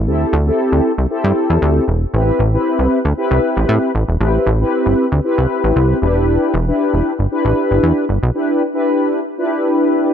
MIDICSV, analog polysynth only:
0, 0, Header, 1, 2, 480
1, 0, Start_track
1, 0, Key_signature, 0, "minor"
1, 0, Tempo, 517241
1, 68, Time_signature, 4, 2, 24, 8
1, 9407, End_track
2, 0, Start_track
2, 0, Title_t, "Analog polysynth"
2, 0, Program_c, 0, 90
2, 62, Note_on_c, 0, 60, 86
2, 66, Note_on_c, 0, 64, 82
2, 68, Note_on_c, 0, 67, 74
2, 70, Note_on_c, 0, 69, 93
2, 320, Note_off_c, 0, 60, 0
2, 321, Note_off_c, 0, 64, 0
2, 323, Note_off_c, 0, 67, 0
2, 324, Note_off_c, 0, 69, 0
2, 429, Note_on_c, 0, 60, 85
2, 431, Note_on_c, 0, 64, 85
2, 433, Note_on_c, 0, 67, 86
2, 437, Note_on_c, 0, 69, 97
2, 852, Note_off_c, 0, 60, 0
2, 853, Note_off_c, 0, 64, 0
2, 854, Note_off_c, 0, 67, 0
2, 856, Note_off_c, 0, 69, 0
2, 1022, Note_on_c, 0, 60, 84
2, 1024, Note_on_c, 0, 64, 79
2, 1026, Note_on_c, 0, 67, 85
2, 1029, Note_on_c, 0, 69, 97
2, 1705, Note_off_c, 0, 60, 0
2, 1706, Note_off_c, 0, 64, 0
2, 1707, Note_off_c, 0, 67, 0
2, 1708, Note_off_c, 0, 69, 0
2, 1983, Note_on_c, 0, 60, 84
2, 1986, Note_on_c, 0, 64, 77
2, 1987, Note_on_c, 0, 67, 78
2, 1990, Note_on_c, 0, 71, 88
2, 2240, Note_off_c, 0, 60, 0
2, 2241, Note_off_c, 0, 64, 0
2, 2242, Note_off_c, 0, 67, 0
2, 2243, Note_off_c, 0, 71, 0
2, 2350, Note_on_c, 0, 60, 86
2, 2353, Note_on_c, 0, 64, 85
2, 2355, Note_on_c, 0, 67, 75
2, 2356, Note_on_c, 0, 71, 96
2, 2772, Note_off_c, 0, 60, 0
2, 2774, Note_off_c, 0, 64, 0
2, 2775, Note_off_c, 0, 67, 0
2, 2775, Note_off_c, 0, 71, 0
2, 2942, Note_on_c, 0, 60, 82
2, 2944, Note_on_c, 0, 64, 86
2, 2947, Note_on_c, 0, 67, 83
2, 2948, Note_on_c, 0, 71, 101
2, 3625, Note_off_c, 0, 60, 0
2, 3625, Note_off_c, 0, 64, 0
2, 3627, Note_off_c, 0, 67, 0
2, 3627, Note_off_c, 0, 71, 0
2, 3905, Note_on_c, 0, 60, 85
2, 3906, Note_on_c, 0, 64, 73
2, 3909, Note_on_c, 0, 67, 82
2, 3911, Note_on_c, 0, 71, 91
2, 4161, Note_off_c, 0, 60, 0
2, 4162, Note_off_c, 0, 64, 0
2, 4163, Note_off_c, 0, 67, 0
2, 4164, Note_off_c, 0, 71, 0
2, 4270, Note_on_c, 0, 60, 83
2, 4272, Note_on_c, 0, 64, 85
2, 4274, Note_on_c, 0, 67, 84
2, 4278, Note_on_c, 0, 71, 100
2, 4692, Note_off_c, 0, 60, 0
2, 4693, Note_off_c, 0, 64, 0
2, 4694, Note_off_c, 0, 67, 0
2, 4696, Note_off_c, 0, 71, 0
2, 4863, Note_on_c, 0, 60, 90
2, 4865, Note_on_c, 0, 64, 83
2, 4868, Note_on_c, 0, 67, 82
2, 4871, Note_on_c, 0, 71, 100
2, 5545, Note_off_c, 0, 60, 0
2, 5546, Note_off_c, 0, 64, 0
2, 5547, Note_off_c, 0, 67, 0
2, 5549, Note_off_c, 0, 71, 0
2, 5583, Note_on_c, 0, 62, 91
2, 5585, Note_on_c, 0, 64, 81
2, 5587, Note_on_c, 0, 67, 86
2, 5590, Note_on_c, 0, 71, 97
2, 6065, Note_off_c, 0, 62, 0
2, 6066, Note_off_c, 0, 64, 0
2, 6067, Note_off_c, 0, 67, 0
2, 6069, Note_off_c, 0, 71, 0
2, 6190, Note_on_c, 0, 62, 83
2, 6192, Note_on_c, 0, 64, 80
2, 6195, Note_on_c, 0, 67, 82
2, 6197, Note_on_c, 0, 71, 88
2, 6612, Note_off_c, 0, 62, 0
2, 6613, Note_off_c, 0, 64, 0
2, 6615, Note_off_c, 0, 67, 0
2, 6616, Note_off_c, 0, 71, 0
2, 6786, Note_on_c, 0, 62, 84
2, 6789, Note_on_c, 0, 64, 81
2, 6789, Note_on_c, 0, 67, 75
2, 6793, Note_on_c, 0, 71, 105
2, 7467, Note_off_c, 0, 62, 0
2, 7468, Note_off_c, 0, 64, 0
2, 7468, Note_off_c, 0, 67, 0
2, 7470, Note_off_c, 0, 71, 0
2, 7742, Note_on_c, 0, 62, 84
2, 7745, Note_on_c, 0, 64, 84
2, 7748, Note_on_c, 0, 67, 78
2, 7750, Note_on_c, 0, 71, 91
2, 8000, Note_off_c, 0, 62, 0
2, 8001, Note_off_c, 0, 64, 0
2, 8003, Note_off_c, 0, 67, 0
2, 8003, Note_off_c, 0, 71, 0
2, 8109, Note_on_c, 0, 62, 88
2, 8111, Note_on_c, 0, 64, 78
2, 8115, Note_on_c, 0, 67, 79
2, 8115, Note_on_c, 0, 71, 98
2, 8531, Note_off_c, 0, 62, 0
2, 8533, Note_off_c, 0, 64, 0
2, 8534, Note_off_c, 0, 67, 0
2, 8535, Note_off_c, 0, 71, 0
2, 8703, Note_on_c, 0, 62, 87
2, 8706, Note_on_c, 0, 64, 80
2, 8709, Note_on_c, 0, 65, 68
2, 8711, Note_on_c, 0, 71, 97
2, 8766, Note_on_c, 0, 67, 85
2, 8769, Note_off_c, 0, 65, 0
2, 9385, Note_off_c, 0, 62, 0
2, 9387, Note_off_c, 0, 64, 0
2, 9389, Note_off_c, 0, 71, 0
2, 9407, Note_off_c, 0, 67, 0
2, 9407, End_track
0, 0, End_of_file